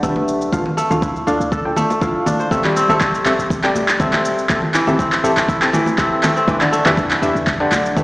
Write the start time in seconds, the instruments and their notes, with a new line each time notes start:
Already playing: 808-style bass B1, kora D3
0.03 kora A3, synth stab D4 G4 B4 E5, kick, low conga, shaker
0.16 high conga
0.28 shaker
0.41 shaker
0.53 synth stab D4 F4 A4 F5, kick, high conga, shaker
0.65 low conga
0.77 kora A3, shaker
0.91 808-style bass D2, synth stab D4 F4 A4 F5, high conga, low conga, shaker
1.02 kora E4, kick, shaker
1.16 shaker
1.27 808-style bass D2, kora D4, synth stab D4 F4 A4 F5, shaker
1.40 808-style bass D2, shaker
1.52 kora A4, kick, shaker
1.65 synth stab D4 F4 A4 G5
1.76 kora A3, high conga, low conga, shaker
1.90 high conga, shaker
2.01 synth stab D4 F4 A4 F5, kora E4, kick, shaker
2.26 808-style bass C2, kora D4, high conga, low conga, shaker
2.40 kora C5, shaker
2.51 kora A3, synth stab C4 G4 A4 E5, kick, high conga, shaker
2.64 kora G3, clap, low conga
2.76 kora C4, shaker
2.88 808-style bass A1, kora A3, synth stab C4 G4 A4 E5, high conga, low conga, shaker
3.01 kora C4, kick, clap, shaker
3.15 shaker
3.25 808-style bass A1, synth stab C4 G4 A4 E5, clap, shaker
3.39 808-style bass A1, shaker
3.50 kick, shaker
3.64 kora G3, synth stab C4 G4 A4 G5, clap
3.75 808-style bass E1, high conga, shaker
3.88 clap, shaker
4.00 kora C4, synth stab C4 G4 A4 E5, kick, low conga, shaker
4.13 clap, high conga
4.25 shaker
4.38 shaker
4.49 synth stab C4 G4 A4 E5, kick, clap, high conga, shaker
4.62 low conga
4.74 kora E3, clap, shaker
4.87 808-style bass A1, synth stab C4 G4 A4 E5, high conga, low conga, shaker
4.99 kora C4, kick, shaker
5.12 clap, shaker
5.24 808-style bass A1, kora A3, synth stab C4 G4 A4 E5, shaker
5.37 808-style bass A1, clap, shaker
5.49 kora E4, kick, shaker
5.62 synth stab C4 G4 A4 G5, clap
5.73 kora E3, high conga, low conga, shaker
5.86 high conga, shaker
5.98 synth stab C4 G4 A4 E5, kora C4, kick, clap, shaker
6.23 kora A3, clap, high conga, low conga, shaker
6.36 kora C4, shaker
6.47 kora E3, synth stab D4 G4 B4 E5, kick, high conga, shaker
6.61 kora D3, clap, low conga
6.72 kora A3, shaker
6.85 808-style bass E2, kora E3, synth stab D4 G4 B4 E5, clap, high conga, low conga, shaker
6.97 kora A3, kick, shaker
7.11 clap, shaker
7.22 808-style bass E2, synth stab D4 G4 B4 E5, shaker
7.35 808-style bass E2, shaker
7.47 kick, clap, shaker
7.60 kora D3, synth stab D4 G4 B4 G5
7.71 808-style bass B1, clap, high conga, shaker
7.86 shaker
7.96 kora A3, synth stab D4 G4 B4 E5, kick, low conga, shaker